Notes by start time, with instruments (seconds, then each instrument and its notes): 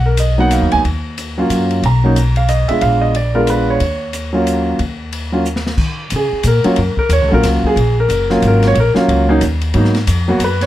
Already playing: upright bass B1
0.06 grand piano A#4
0.17 grand piano D#5, hi-hat pedal, ride
0.38 grand piano F#3 A#3 B3 D#4 F#5
0.51 grand piano F5, hi-hat pedal, ride
0.62 upright bass D#2
0.71 upright bass D2, grand piano G#5, ride
0.84 upright bass D#2, ride
1.18 hi-hat pedal, ride
1.38 grand piano F#3 A#3 C#4 F4
1.49 upright bass F#2, hi-hat pedal, ride
1.71 ride
1.82 upright bass B1, grand piano A#5, ride
2.04 grand piano F#3 A#3 C#4 D#4
2.16 hi-hat pedal, ride
2.36 grand piano F5, ride
2.48 grand piano D#5, hi-hat pedal, ride
2.68 grand piano G#3 B3 D4 F4 E5, muted upright bass stroke, ride
2.81 upright bass A#1, grand piano F5, ride
3.01 grand piano D#5
3.15 grand piano D5, ride
3.34 grand piano G#3 B3 D4 F4 A#4
3.47 grand piano B4, hi-hat pedal, ride
3.70 grand piano C#5
3.80 upright bass D#2, ride
4.13 hi-hat pedal, ride
4.33 grand piano F#3 A#3 C#4 F4
4.47 hi-hat pedal, ride
4.79 upright bass D#2, ride
5.12 ride
5.32 grand piano F#3 A#3 C#4 F4
5.45 hi-hat pedal
5.56 snare
5.67 snare
5.77 upright bass D#3, kick, crash
6.10 upright bass C#3, hi-hat pedal, ride
6.16 grand piano G#4
6.32 muted upright bass stroke
6.43 upright bass A#2, hi-hat pedal, ride
6.47 grand piano A#4
6.64 grand piano F#3 A#3 C#4 F4, muted upright bass stroke, ride
6.76 upright bass F#2, ride
6.97 grand piano A#4, muted upright bass stroke, kick
7.09 upright bass D#2, grand piano C#5, hi-hat pedal, ride
7.21 upright bass C#2
7.29 upright bass A#1, grand piano F#3 A#3 C#4 A4
7.33 grand piano F4 A#4
7.43 upright bass C#2, snare, hi-hat pedal, ride
7.64 grand piano G#4, muted upright bass stroke, kick
7.76 upright bass A#1, ride
8.00 grand piano A#4
8.09 upright bass F#1, hi-hat pedal, ride
8.30 grand piano F#3 A#3 C#4 F4, snare
8.42 upright bass G#1, hi-hat pedal, ride
8.47 grand piano A#4
8.62 snare, ride
8.67 grand piano C#5
8.74 upright bass A#1, ride
8.80 grand piano A#4
8.94 grand piano F#3 A#3 C#4 F4, muted upright bass stroke, snare
9.08 upright bass C#2, ride
9.29 grand piano F#3 A#3 C#4 D#4
9.41 upright bass D#2, hi-hat pedal, ride
9.61 ride
9.74 upright bass G#2, grand piano F#3 A#3 B3 D#4, ride
9.85 snare
9.95 snare, ride
10.07 upright bass F2, hi-hat pedal, ride
10.28 grand piano F#3 A#3 B3 F#4
10.39 upright bass F#2, hi-hat pedal, ride
10.44 grand piano B4
10.61 grand piano C#5, snare, ride